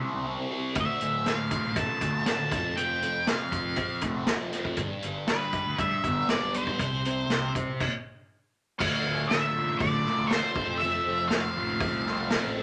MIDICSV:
0, 0, Header, 1, 6, 480
1, 0, Start_track
1, 0, Tempo, 501672
1, 740, Time_signature, 4, 2, 24, 8
1, 12083, End_track
2, 0, Start_track
2, 0, Title_t, "Lead electric guitar"
2, 0, Program_c, 0, 29
2, 769, Note_on_c, 0, 76, 81
2, 1219, Note_off_c, 0, 76, 0
2, 1223, Note_on_c, 0, 77, 80
2, 1698, Note_on_c, 0, 81, 97
2, 1716, Note_off_c, 0, 77, 0
2, 2146, Note_off_c, 0, 81, 0
2, 2176, Note_on_c, 0, 81, 103
2, 2645, Note_off_c, 0, 81, 0
2, 2649, Note_on_c, 0, 79, 92
2, 3139, Note_on_c, 0, 77, 68
2, 3151, Note_off_c, 0, 79, 0
2, 3825, Note_off_c, 0, 77, 0
2, 5049, Note_on_c, 0, 71, 83
2, 5505, Note_off_c, 0, 71, 0
2, 5547, Note_on_c, 0, 76, 100
2, 5995, Note_off_c, 0, 76, 0
2, 6027, Note_on_c, 0, 74, 94
2, 6268, Note_on_c, 0, 72, 74
2, 6276, Note_off_c, 0, 74, 0
2, 7192, Note_off_c, 0, 72, 0
2, 8414, Note_on_c, 0, 77, 107
2, 8883, Note_off_c, 0, 77, 0
2, 8887, Note_on_c, 0, 76, 98
2, 9360, Note_off_c, 0, 76, 0
2, 9364, Note_on_c, 0, 74, 96
2, 9826, Note_on_c, 0, 72, 86
2, 9870, Note_off_c, 0, 74, 0
2, 10311, Note_on_c, 0, 76, 86
2, 10340, Note_off_c, 0, 72, 0
2, 10795, Note_off_c, 0, 76, 0
2, 10799, Note_on_c, 0, 77, 90
2, 11967, Note_off_c, 0, 77, 0
2, 12083, End_track
3, 0, Start_track
3, 0, Title_t, "Transistor combo organ"
3, 0, Program_c, 1, 18
3, 8405, Note_on_c, 1, 57, 64
3, 8405, Note_on_c, 1, 69, 66
3, 8406, Note_on_c, 1, 53, 61
3, 8412, Note_on_c, 1, 62, 56
3, 10070, Note_off_c, 1, 69, 0
3, 10080, Note_on_c, 1, 60, 54
3, 10081, Note_off_c, 1, 62, 0
3, 10082, Note_on_c, 1, 69, 61
3, 12083, Note_off_c, 1, 53, 0
3, 12083, Note_off_c, 1, 57, 0
3, 12083, Note_off_c, 1, 60, 0
3, 12083, Note_off_c, 1, 69, 0
3, 12083, End_track
4, 0, Start_track
4, 0, Title_t, "Distorted electric guitar"
4, 0, Program_c, 2, 30
4, 0, Note_on_c, 2, 60, 55
4, 0, Note_on_c, 2, 67, 67
4, 0, Note_on_c, 2, 72, 74
4, 7, Note_on_c, 2, 64, 63
4, 245, Note_off_c, 2, 60, 0
4, 256, Note_on_c, 2, 60, 61
4, 483, Note_off_c, 2, 67, 0
4, 495, Note_on_c, 2, 67, 68
4, 729, Note_on_c, 2, 38, 69
4, 733, Note_off_c, 2, 64, 0
4, 737, Note_off_c, 2, 67, 0
4, 738, Note_off_c, 2, 60, 0
4, 738, Note_off_c, 2, 72, 0
4, 963, Note_on_c, 2, 45, 55
4, 1212, Note_on_c, 2, 57, 66
4, 1439, Note_on_c, 2, 65, 73
4, 1672, Note_off_c, 2, 57, 0
4, 1683, Note_on_c, 2, 57, 68
4, 1929, Note_on_c, 2, 50, 57
4, 1936, Note_off_c, 2, 38, 0
4, 2155, Note_off_c, 2, 45, 0
4, 2167, Note_on_c, 2, 45, 64
4, 2411, Note_off_c, 2, 65, 0
4, 2413, Note_off_c, 2, 57, 0
4, 2414, Note_off_c, 2, 45, 0
4, 2414, Note_on_c, 2, 41, 62
4, 2416, Note_off_c, 2, 50, 0
4, 2642, Note_off_c, 2, 41, 0
4, 2653, Note_on_c, 2, 41, 70
4, 2896, Note_on_c, 2, 53, 52
4, 3138, Note_on_c, 2, 60, 70
4, 3383, Note_on_c, 2, 65, 75
4, 3603, Note_off_c, 2, 60, 0
4, 3614, Note_on_c, 2, 60, 64
4, 3860, Note_off_c, 2, 41, 0
4, 3864, Note_on_c, 2, 57, 53
4, 4089, Note_off_c, 2, 53, 0
4, 4100, Note_on_c, 2, 53, 69
4, 4326, Note_off_c, 2, 60, 0
4, 4337, Note_on_c, 2, 60, 68
4, 4582, Note_off_c, 2, 60, 0
4, 4584, Note_off_c, 2, 53, 0
4, 4586, Note_off_c, 2, 57, 0
4, 4586, Note_off_c, 2, 65, 0
4, 4588, Note_on_c, 2, 43, 65
4, 4836, Note_on_c, 2, 55, 59
4, 5068, Note_on_c, 2, 62, 75
4, 5312, Note_on_c, 2, 67, 77
4, 5536, Note_off_c, 2, 62, 0
4, 5548, Note_on_c, 2, 62, 68
4, 5790, Note_off_c, 2, 43, 0
4, 5793, Note_on_c, 2, 59, 57
4, 6030, Note_off_c, 2, 55, 0
4, 6041, Note_on_c, 2, 55, 63
4, 6263, Note_off_c, 2, 62, 0
4, 6275, Note_on_c, 2, 62, 64
4, 6512, Note_off_c, 2, 67, 0
4, 6513, Note_off_c, 2, 59, 0
4, 6513, Note_off_c, 2, 62, 0
4, 6515, Note_on_c, 2, 48, 67
4, 6516, Note_off_c, 2, 55, 0
4, 6753, Note_on_c, 2, 60, 49
4, 6999, Note_on_c, 2, 67, 71
4, 7238, Note_on_c, 2, 72, 73
4, 7473, Note_off_c, 2, 60, 0
4, 7474, Note_off_c, 2, 48, 0
4, 7475, Note_off_c, 2, 72, 0
4, 7476, Note_off_c, 2, 67, 0
4, 8423, Note_on_c, 2, 38, 71
4, 8664, Note_on_c, 2, 45, 63
4, 8906, Note_on_c, 2, 50, 69
4, 9154, Note_on_c, 2, 65, 74
4, 9391, Note_on_c, 2, 57, 67
4, 9608, Note_off_c, 2, 65, 0
4, 9620, Note_on_c, 2, 65, 68
4, 9625, Note_off_c, 2, 38, 0
4, 9865, Note_off_c, 2, 45, 0
4, 9867, Note_off_c, 2, 57, 0
4, 9879, Note_on_c, 2, 57, 66
4, 10103, Note_off_c, 2, 65, 0
4, 10105, Note_off_c, 2, 50, 0
4, 10107, Note_on_c, 2, 41, 71
4, 10113, Note_off_c, 2, 57, 0
4, 10346, Note_off_c, 2, 41, 0
4, 10357, Note_on_c, 2, 41, 80
4, 10596, Note_on_c, 2, 53, 62
4, 10834, Note_on_c, 2, 57, 74
4, 11066, Note_on_c, 2, 65, 76
4, 11310, Note_on_c, 2, 60, 75
4, 11539, Note_off_c, 2, 65, 0
4, 11546, Note_off_c, 2, 41, 0
4, 11551, Note_on_c, 2, 65, 66
4, 11774, Note_off_c, 2, 60, 0
4, 11785, Note_off_c, 2, 53, 0
4, 11785, Note_on_c, 2, 60, 74
4, 12018, Note_off_c, 2, 57, 0
4, 12030, Note_on_c, 2, 57, 67
4, 12083, Note_off_c, 2, 57, 0
4, 12083, Note_off_c, 2, 60, 0
4, 12083, Note_off_c, 2, 65, 0
4, 12083, End_track
5, 0, Start_track
5, 0, Title_t, "Fingered electric bass"
5, 0, Program_c, 3, 33
5, 132, Note_on_c, 3, 36, 74
5, 341, Note_off_c, 3, 36, 0
5, 724, Note_on_c, 3, 38, 90
5, 834, Note_off_c, 3, 38, 0
5, 979, Note_on_c, 3, 38, 72
5, 1495, Note_off_c, 3, 38, 0
5, 1575, Note_on_c, 3, 33, 89
5, 1678, Note_off_c, 3, 33, 0
5, 1683, Note_on_c, 3, 33, 85
5, 1794, Note_off_c, 3, 33, 0
5, 1926, Note_on_c, 3, 38, 87
5, 2139, Note_off_c, 3, 38, 0
5, 2287, Note_on_c, 3, 50, 78
5, 2396, Note_off_c, 3, 50, 0
5, 2406, Note_on_c, 3, 29, 80
5, 3033, Note_off_c, 3, 29, 0
5, 3130, Note_on_c, 3, 29, 86
5, 3342, Note_off_c, 3, 29, 0
5, 3367, Note_on_c, 3, 29, 76
5, 3581, Note_off_c, 3, 29, 0
5, 3963, Note_on_c, 3, 29, 73
5, 4179, Note_off_c, 3, 29, 0
5, 4565, Note_on_c, 3, 31, 82
5, 4678, Note_off_c, 3, 31, 0
5, 4813, Note_on_c, 3, 31, 80
5, 5336, Note_off_c, 3, 31, 0
5, 5413, Note_on_c, 3, 38, 89
5, 5523, Note_off_c, 3, 38, 0
5, 5530, Note_on_c, 3, 38, 72
5, 5642, Note_off_c, 3, 38, 0
5, 5771, Note_on_c, 3, 31, 92
5, 5985, Note_off_c, 3, 31, 0
5, 6130, Note_on_c, 3, 35, 84
5, 6448, Note_off_c, 3, 35, 0
5, 6499, Note_on_c, 3, 36, 95
5, 6917, Note_off_c, 3, 36, 0
5, 6983, Note_on_c, 3, 36, 90
5, 7193, Note_off_c, 3, 36, 0
5, 7226, Note_on_c, 3, 36, 77
5, 7332, Note_off_c, 3, 36, 0
5, 8424, Note_on_c, 3, 38, 85
5, 8839, Note_off_c, 3, 38, 0
5, 8896, Note_on_c, 3, 50, 90
5, 9314, Note_off_c, 3, 50, 0
5, 9381, Note_on_c, 3, 50, 90
5, 9590, Note_off_c, 3, 50, 0
5, 9744, Note_on_c, 3, 38, 81
5, 9951, Note_off_c, 3, 38, 0
5, 10100, Note_on_c, 3, 29, 88
5, 10514, Note_off_c, 3, 29, 0
5, 10583, Note_on_c, 3, 29, 70
5, 10995, Note_off_c, 3, 29, 0
5, 11057, Note_on_c, 3, 33, 93
5, 11265, Note_off_c, 3, 33, 0
5, 11416, Note_on_c, 3, 36, 87
5, 11828, Note_off_c, 3, 36, 0
5, 11899, Note_on_c, 3, 33, 83
5, 12083, Note_off_c, 3, 33, 0
5, 12083, End_track
6, 0, Start_track
6, 0, Title_t, "Drums"
6, 718, Note_on_c, 9, 42, 70
6, 726, Note_on_c, 9, 36, 105
6, 814, Note_off_c, 9, 42, 0
6, 821, Note_off_c, 9, 36, 0
6, 963, Note_on_c, 9, 42, 50
6, 1058, Note_off_c, 9, 42, 0
6, 1205, Note_on_c, 9, 38, 85
6, 1205, Note_on_c, 9, 42, 67
6, 1301, Note_off_c, 9, 38, 0
6, 1301, Note_off_c, 9, 42, 0
6, 1444, Note_on_c, 9, 42, 60
6, 1445, Note_on_c, 9, 36, 84
6, 1539, Note_off_c, 9, 42, 0
6, 1541, Note_off_c, 9, 36, 0
6, 1682, Note_on_c, 9, 42, 80
6, 1684, Note_on_c, 9, 36, 96
6, 1778, Note_off_c, 9, 42, 0
6, 1780, Note_off_c, 9, 36, 0
6, 1925, Note_on_c, 9, 36, 78
6, 1925, Note_on_c, 9, 42, 64
6, 2021, Note_off_c, 9, 36, 0
6, 2021, Note_off_c, 9, 42, 0
6, 2162, Note_on_c, 9, 38, 93
6, 2162, Note_on_c, 9, 42, 83
6, 2258, Note_off_c, 9, 38, 0
6, 2258, Note_off_c, 9, 42, 0
6, 2406, Note_on_c, 9, 36, 106
6, 2406, Note_on_c, 9, 38, 31
6, 2406, Note_on_c, 9, 42, 62
6, 2502, Note_off_c, 9, 36, 0
6, 2502, Note_off_c, 9, 38, 0
6, 2502, Note_off_c, 9, 42, 0
6, 2652, Note_on_c, 9, 42, 78
6, 2748, Note_off_c, 9, 42, 0
6, 2892, Note_on_c, 9, 42, 61
6, 2988, Note_off_c, 9, 42, 0
6, 3128, Note_on_c, 9, 38, 101
6, 3128, Note_on_c, 9, 42, 69
6, 3224, Note_off_c, 9, 38, 0
6, 3224, Note_off_c, 9, 42, 0
6, 3369, Note_on_c, 9, 36, 88
6, 3370, Note_on_c, 9, 42, 57
6, 3464, Note_off_c, 9, 36, 0
6, 3466, Note_off_c, 9, 42, 0
6, 3599, Note_on_c, 9, 42, 69
6, 3607, Note_on_c, 9, 36, 92
6, 3694, Note_off_c, 9, 42, 0
6, 3702, Note_off_c, 9, 36, 0
6, 3838, Note_on_c, 9, 42, 66
6, 3847, Note_on_c, 9, 36, 87
6, 3934, Note_off_c, 9, 42, 0
6, 3942, Note_off_c, 9, 36, 0
6, 4081, Note_on_c, 9, 38, 113
6, 4081, Note_on_c, 9, 42, 70
6, 4177, Note_off_c, 9, 38, 0
6, 4177, Note_off_c, 9, 42, 0
6, 4329, Note_on_c, 9, 38, 32
6, 4329, Note_on_c, 9, 42, 60
6, 4425, Note_off_c, 9, 38, 0
6, 4425, Note_off_c, 9, 42, 0
6, 4448, Note_on_c, 9, 36, 74
6, 4544, Note_off_c, 9, 36, 0
6, 4559, Note_on_c, 9, 42, 70
6, 4567, Note_on_c, 9, 36, 85
6, 4655, Note_off_c, 9, 42, 0
6, 4662, Note_off_c, 9, 36, 0
6, 4808, Note_on_c, 9, 42, 52
6, 4903, Note_off_c, 9, 42, 0
6, 5046, Note_on_c, 9, 38, 89
6, 5046, Note_on_c, 9, 42, 69
6, 5142, Note_off_c, 9, 38, 0
6, 5142, Note_off_c, 9, 42, 0
6, 5286, Note_on_c, 9, 42, 56
6, 5291, Note_on_c, 9, 36, 79
6, 5382, Note_off_c, 9, 42, 0
6, 5387, Note_off_c, 9, 36, 0
6, 5533, Note_on_c, 9, 42, 65
6, 5535, Note_on_c, 9, 36, 97
6, 5629, Note_off_c, 9, 42, 0
6, 5630, Note_off_c, 9, 36, 0
6, 5778, Note_on_c, 9, 36, 92
6, 5779, Note_on_c, 9, 42, 63
6, 5873, Note_off_c, 9, 36, 0
6, 5875, Note_off_c, 9, 42, 0
6, 6015, Note_on_c, 9, 38, 102
6, 6015, Note_on_c, 9, 42, 74
6, 6110, Note_off_c, 9, 38, 0
6, 6110, Note_off_c, 9, 42, 0
6, 6260, Note_on_c, 9, 42, 67
6, 6355, Note_off_c, 9, 42, 0
6, 6380, Note_on_c, 9, 36, 75
6, 6476, Note_off_c, 9, 36, 0
6, 6501, Note_on_c, 9, 36, 87
6, 6501, Note_on_c, 9, 42, 76
6, 6596, Note_off_c, 9, 36, 0
6, 6596, Note_off_c, 9, 42, 0
6, 6746, Note_on_c, 9, 42, 56
6, 6841, Note_off_c, 9, 42, 0
6, 6984, Note_on_c, 9, 38, 99
6, 6984, Note_on_c, 9, 42, 67
6, 7079, Note_off_c, 9, 38, 0
6, 7079, Note_off_c, 9, 42, 0
6, 7225, Note_on_c, 9, 36, 87
6, 7228, Note_on_c, 9, 42, 68
6, 7321, Note_off_c, 9, 36, 0
6, 7324, Note_off_c, 9, 42, 0
6, 7467, Note_on_c, 9, 36, 84
6, 7469, Note_on_c, 9, 49, 79
6, 7563, Note_off_c, 9, 36, 0
6, 7564, Note_off_c, 9, 49, 0
6, 8424, Note_on_c, 9, 36, 105
6, 8426, Note_on_c, 9, 49, 97
6, 8519, Note_off_c, 9, 36, 0
6, 8522, Note_off_c, 9, 49, 0
6, 8905, Note_on_c, 9, 38, 95
6, 8905, Note_on_c, 9, 46, 46
6, 9001, Note_off_c, 9, 38, 0
6, 9001, Note_off_c, 9, 46, 0
6, 9377, Note_on_c, 9, 46, 47
6, 9381, Note_on_c, 9, 36, 105
6, 9472, Note_off_c, 9, 46, 0
6, 9477, Note_off_c, 9, 36, 0
6, 9619, Note_on_c, 9, 38, 34
6, 9715, Note_off_c, 9, 38, 0
6, 9861, Note_on_c, 9, 38, 96
6, 9861, Note_on_c, 9, 46, 57
6, 9957, Note_off_c, 9, 38, 0
6, 9957, Note_off_c, 9, 46, 0
6, 10100, Note_on_c, 9, 36, 106
6, 10196, Note_off_c, 9, 36, 0
6, 10340, Note_on_c, 9, 46, 49
6, 10436, Note_off_c, 9, 46, 0
6, 10817, Note_on_c, 9, 38, 95
6, 10817, Note_on_c, 9, 46, 54
6, 10913, Note_off_c, 9, 38, 0
6, 10913, Note_off_c, 9, 46, 0
6, 11291, Note_on_c, 9, 46, 50
6, 11295, Note_on_c, 9, 36, 111
6, 11387, Note_off_c, 9, 46, 0
6, 11390, Note_off_c, 9, 36, 0
6, 11539, Note_on_c, 9, 38, 36
6, 11635, Note_off_c, 9, 38, 0
6, 11771, Note_on_c, 9, 38, 101
6, 11771, Note_on_c, 9, 46, 55
6, 11867, Note_off_c, 9, 38, 0
6, 11867, Note_off_c, 9, 46, 0
6, 12083, End_track
0, 0, End_of_file